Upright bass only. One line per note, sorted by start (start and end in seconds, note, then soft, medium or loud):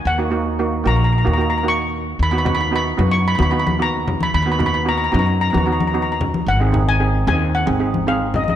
0.05 0.81 D#2 loud
0.86 1.22 A#1 loud
1.27 2.16 D#2 medium
2.19 2.96 D#2 loud
2.99 3.35 F#2 loud
3.40 4.29 D#2 medium
4.34 5.10 D#2 loud
5.14 5.50 F#2 loud
5.55 6.48 D#2 medium
6.47 7.23 G#1 loud
7.27 7.64 D#2 loud
7.68 8.56 G#1 loud